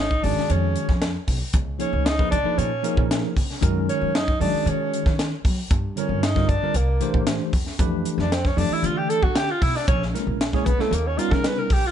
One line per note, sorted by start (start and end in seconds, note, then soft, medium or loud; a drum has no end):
0.00 0.22 G#1 medium
0.00 0.25 D#4 medium
0.11 kick medium
0.23 0.36 G#1 medium
0.23 0.89 D#3 medium
0.23 0.89 G#3 medium
0.23 0.90 C#4 medium
0.23 0.53 D4 medium
0.23 0.90 F#4 medium
0.23 0.90 G#4 medium
0.23 open hi-hat medium
0.37 muted upright bass stroke soft
0.37 snare soft
0.50 0.74 F2 medium
0.50 1.03 C#4 medium
0.50 closed hi-hat medium
0.76 closed hi-hat medium
0.89 1.13 F2 medium
0.89 kick medium
0.89 snare soft
1.02 snare loud
1.02 closed hi-hat medium
1.28 1.40 B1 medium
1.28 kick medium
1.28 open hi-hat medium
1.53 1.78 C#2 medium
1.53 kick loud
1.53 closed hi-hat medium
1.79 2.04 F3 medium
1.79 2.05 A#3 medium
1.79 2.08 C#4 medium
1.79 2.05 D#4 medium
1.79 2.05 G#4 medium
1.79 2.05 C#5 medium
1.79 closed hi-hat medium
1.93 2.30 C#2 medium
2.06 2.30 D#4 medium
2.06 snare loud
2.06 closed hi-hat medium
2.19 2.35 F3 medium
2.19 2.35 A#3 medium
2.19 2.36 D#4 medium
2.19 2.36 G#4 medium
2.19 2.36 B4 medium
2.19 kick medium
2.31 2.44 C#2 medium
2.31 2.60 D4 medium
2.31 kick medium
2.31 closed hi-hat medium
2.44 2.69 F3 medium
2.44 2.69 A#3 medium
2.44 2.70 D#4 medium
2.44 2.70 G#4 medium
2.44 2.70 B4 medium
2.44 muted upright bass stroke soft
2.58 2.82 A#2 medium
2.58 3.10 C#4 medium
2.58 closed hi-hat medium
2.83 3.33 F3 medium
2.83 3.33 A#3 medium
2.83 3.33 D#4 medium
2.83 3.34 G#4 medium
2.83 3.34 A#4 medium
2.83 closed hi-hat medium
2.97 3.22 A#2 medium
2.97 kick medium
3.11 snare loud
3.11 closed hi-hat medium
3.36 3.49 C#3 medium
3.36 kick medium
3.36 open hi-hat medium
3.50 snare soft
3.61 3.87 F#2 medium
3.61 4.11 D#3 medium
3.61 4.11 G#3 medium
3.61 4.12 C#4 medium
3.61 4.12 F#4 medium
3.61 4.12 A#4 loud
3.61 kick loud
3.61 closed hi-hat medium
3.89 4.17 C#4 medium
3.89 closed hi-hat medium
4.01 4.38 F#2 medium
4.15 4.40 D#4 medium
4.15 snare loud
4.15 closed hi-hat medium
4.28 kick medium
4.40 4.53 F#2 medium
4.40 5.06 D#3 medium
4.40 5.06 G#3 medium
4.40 5.07 C#4 medium
4.40 4.71 D4 medium
4.40 5.07 F#4 medium
4.40 5.07 G#4 medium
4.40 open hi-hat medium
4.53 muted upright bass stroke soft
4.66 4.91 D#3 medium
4.66 5.20 C#4 medium
4.66 closed hi-hat medium
4.93 closed hi-hat medium
5.06 5.30 D#3 medium
5.06 kick medium
5.06 snare soft
5.19 snare loud
5.19 closed hi-hat medium
5.45 5.57 F#3 medium
5.45 kick medium
5.45 open hi-hat medium
5.71 5.95 G2 loud
5.71 kick loud
5.71 closed hi-hat medium
5.96 6.21 D3 medium
5.96 6.21 G3 medium
5.96 6.22 C4 medium
5.96 6.26 C#4 medium
5.96 6.22 F4 medium
5.96 6.22 A#4 medium
5.96 closed hi-hat medium
6.09 6.46 G2 medium
6.23 6.50 D#4 medium
6.23 snare loud
6.23 closed hi-hat medium
6.35 6.52 D3 medium
6.35 6.52 G3 medium
6.35 6.52 C4 medium
6.35 6.53 F4 medium
6.35 6.53 A#4 medium
6.35 kick medium
6.35 snare soft
6.48 6.61 G2 medium
6.48 6.78 D4 medium
6.48 kick medium
6.48 closed hi-hat medium
6.62 6.75 D3 medium
6.62 6.75 G3 medium
6.62 6.75 C4 medium
6.62 6.76 F4 medium
6.62 6.76 A#4 medium
6.62 muted upright bass stroke soft
6.74 6.99 C2 medium
6.74 7.28 A#3 medium
6.74 closed hi-hat medium
7.00 7.50 E3 medium
7.00 7.51 A3 medium
7.00 7.51 D4 medium
7.00 7.51 G4 medium
7.00 7.51 C5 medium
7.00 closed hi-hat medium
7.14 7.39 A2 medium
7.14 kick medium
7.27 snare loud
7.27 closed hi-hat medium
7.53 7.65 E2 medium
7.53 kick medium
7.53 open hi-hat medium
7.66 snare soft
7.79 8.04 F2 loud
7.79 8.28 E3 medium
7.79 8.29 A3 medium
7.79 8.29 D4 medium
7.79 8.29 G4 medium
7.79 8.29 B4 medium
7.79 kick loud
7.79 closed hi-hat medium
8.05 closed hi-hat medium
8.18 8.55 F2 medium
8.18 8.34 D4 medium
8.18 snare soft
8.32 8.48 C4 medium
8.32 snare loud
8.32 closed hi-hat medium
8.45 8.60 C#4 medium
8.45 kick medium
8.45 snare soft
8.56 8.69 F2 medium
8.56 9.23 E3 medium
8.56 9.23 A3 medium
8.56 9.23 D4 medium
8.56 8.75 D4 medium
8.56 9.23 G4 medium
8.56 9.24 D5 medium
8.56 open hi-hat medium
8.70 8.87 E4 medium
8.70 muted upright bass stroke soft
8.83 9.08 D3 medium
8.83 8.99 F4 medium
8.83 closed hi-hat medium
8.98 9.11 G4 medium
9.10 9.25 A4 loud
9.10 closed hi-hat medium
9.22 9.47 D3 medium
9.22 9.39 F#4 medium
9.22 kick medium
9.36 9.53 G4 medium
9.36 snare loud
9.36 closed hi-hat medium
9.51 9.63 F4 medium
9.62 9.74 B1 medium
9.62 9.78 E4 medium
9.62 kick medium
9.62 open hi-hat medium
9.76 9.88 D4 medium
9.76 snare soft
9.88 10.12 A#1 loud
9.88 10.04 C#4 medium
9.88 kick loud
9.88 closed hi-hat medium
10.02 snare soft
10.13 10.38 G#3 medium
10.13 10.39 A#3 medium
10.13 10.39 C#4 medium
10.13 10.39 E4 medium
10.13 10.39 A#4 medium
10.13 snare soft
10.13 closed hi-hat medium
10.27 10.64 A#1 medium
10.41 snare loud
10.41 closed hi-hat medium
10.53 10.69 G#3 medium
10.53 10.70 A#3 medium
10.53 10.70 C#4 medium
10.53 10.67 C#4 medium
10.53 10.70 E4 medium
10.53 10.70 G#4 medium
10.53 kick medium
10.53 snare soft
10.65 10.78 A#1 medium
10.65 10.82 B3 medium
10.65 kick medium
10.65 closed hi-hat medium
10.78 10.91 G#3 medium
10.78 10.96 A3 medium
10.78 10.92 A#3 medium
10.78 10.92 C#4 medium
10.78 10.92 E4 medium
10.78 10.93 C#5 medium
10.78 muted upright bass stroke soft
10.78 snare soft
10.91 11.16 D#2 medium
10.91 11.08 A#3 medium
10.91 closed hi-hat medium
11.07 11.20 C#4 medium
11.18 11.67 G3 medium
11.18 11.68 B3 medium
11.18 11.68 C#4 medium
11.18 11.68 D#4 medium
11.18 11.34 F4 medium
11.18 11.68 A#4 medium
11.18 closed hi-hat medium
11.31 11.56 C#3 loud
11.31 11.48 A#4 medium
11.31 kick medium
11.31 snare soft
11.44 11.60 B4 loud
11.44 snare loud
11.44 closed hi-hat medium
11.59 11.74 A#4 medium
11.70 11.83 A#1 medium
11.70 11.89 G4 loud
11.70 kick medium
11.70 open hi-hat medium
11.87 11.91 F4 medium